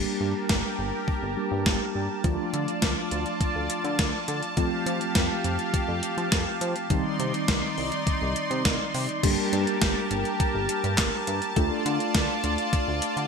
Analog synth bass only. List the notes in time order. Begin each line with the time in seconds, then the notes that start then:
0.21 G2
0.50 G1
0.79 G1
1.22 G1
1.51 G2
1.66 G1
1.95 G2
2.24 D2
2.53 D3
2.82 D2
3.12 D2
3.55 D2
3.84 D3
3.99 D2
4.28 D3
4.57 F2
4.86 F3
5.15 F2
5.45 F2
5.88 F2
6.17 F3
6.32 F2
6.61 F3
6.90 C2
7.19 C3
7.49 C2
7.78 C2
8.21 C2
8.51 C3
8.65 C2
8.94 C3
9.24 G1
9.53 G2
9.82 G1
10.11 G1
10.55 G1
10.84 G2
10.98 G1
11.28 G2
11.57 D2
11.86 D3
12.15 D2
12.44 D2
12.88 D2
13.17 D3